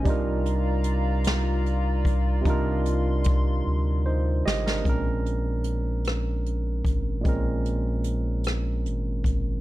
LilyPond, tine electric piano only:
\new Staff \with { instrumentName = "Tine electric piano" } { \time 6/8 \key c \minor \tempo 4. = 50 << { r2. | r2 <ees' c''>8 <g' ees''>16 <d' bes'>16~ | \key bes \mixolydian <d' bes'>16 r2 r8. | r2. | } \\ { <c g d' ees' f' bes'>2. | <c g d' ees' f' bes'>2. | <bes, aes c' des' bes'>2. | <bes, aes c' des' bes'>2. | } >> }